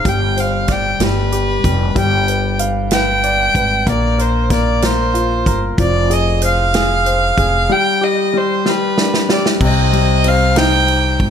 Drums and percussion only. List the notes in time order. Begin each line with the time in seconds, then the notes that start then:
0.05 kick, closed hi-hat
0.37 closed hi-hat
0.68 kick, snare, closed hi-hat
1.00 snare, closed hi-hat
1.32 closed hi-hat
1.64 kick, closed hi-hat
1.96 kick, closed hi-hat
2.28 closed hi-hat
2.59 closed hi-hat
2.91 snare, closed hi-hat
3.24 closed hi-hat
3.55 kick, closed hi-hat
3.87 kick, closed hi-hat
4.19 closed hi-hat
4.50 kick, snare, closed hi-hat
4.82 snare, closed hi-hat
5.15 closed hi-hat
5.46 kick, closed hi-hat
5.78 kick, closed hi-hat
6.11 closed hi-hat
6.42 closed hi-hat
6.74 snare, closed hi-hat
7.06 closed hi-hat
7.38 kick, closed hi-hat
8.66 snare
8.98 snare
9.14 snare
9.30 snare
9.46 snare
9.61 kick, crash
9.93 ride
10.24 ride
10.56 snare, ride
10.88 ride
11.20 kick, ride